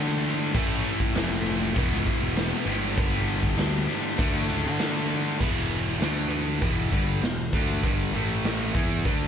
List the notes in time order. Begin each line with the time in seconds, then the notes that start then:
Already playing: D3 A3 D4 F#4
0.24 ride
0.52 A1 A2 E3 A3 C#4, kick, crash, cowbell
0.56 E4
0.85 ride
1.00 kick
1.15 F1, snare, ride, cowbell
1.46 ride
1.74 E1 E2 B2 E3 B3 E4, kick, ride, cowbell
1.79 F#4
1.91 C#2
2.07 kick, ride
2.22 E1
2.36 E1, snare, ride, cowbell
2.65 G1 G2 D3 G3 B3 D4 G4, ride
2.98 kick, ride, cowbell
3.14 snare
3.28 ride
3.43 kick, snare
3.58 D2, snare, ride, cowbell
3.87 G2 D3 G3 B3 D4 G4, ride
4.16 D2 D3 A3 D4, kick, ride, cowbell
4.21 F#4
4.34 D2
4.49 C#2, ride
4.65 D3
4.79 snare, ride, cowbell
5.11 ride
5.39 E1 E2 B2 E3, kick, crash, cowbell
5.70 cowbell
5.87 snare
6.00 D2 D3 A3 D4, snare, closed hi-hat, cowbell
6.31 cowbell
6.61 E1 E2 B2 E3, kick, closed hi-hat, cowbell
6.91 G1 G2 D3 G3, kick
7.22 E1 E2 B2, snare, closed hi-hat, cowbell
7.53 D2 D3 A3 D4, kick
7.82 G1 G2 D3 G3, kick, closed hi-hat, cowbell
8.13 A1 A2 E3 A3, cowbell
8.44 snare, closed hi-hat, cowbell
8.74 E2 E3 B3 E4, kick, cowbell
9.05 D2 D3 A3 D4, kick, closed hi-hat, cowbell